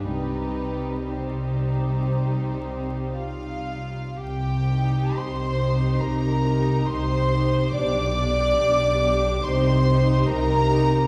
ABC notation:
X:1
M:4/4
L:1/8
Q:1/4=69
K:Cm
V:1 name="Violin section"
=B2 c4 f2 | g2 c'2 b2 c'2 | d'4 c'2 b2 |]
V:2 name="Violin section"
[EG]2 [EG]4 F2 | G2 c2 B2 c2 | d4 c2 B2 |]
V:3 name="Viola section"
[G,E]2 [G,E]6 | z [EG]2 [EG]2 [EG]2 [EG] | [DG] [DG]2 [DG] [EG] [EG]2 [EG] |]
V:4 name="Cello section" clef=bass
C,8 | C,2 C,2 C,2 C,2 | =B,,2 B,,2 C,2 C,2 |]
V:5 name="Double bass section" clef=bass
C,,8 | C,,2 C,,2 C,,2 C,,2 | =B,,,2 B,,,2 C,,2 C,,2 |]